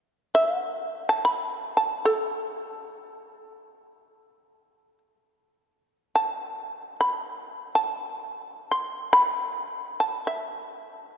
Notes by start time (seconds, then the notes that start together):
0.35 E5
0.56 F#5
1.09 A5
1.25 B5
1.55 A5
1.77 A5
2.05 A4
6.15 A5
6.68 F#5
7.01 B5
7.75 A5
8.71 C6
9.13 B5
10.00 A5
10.27 E5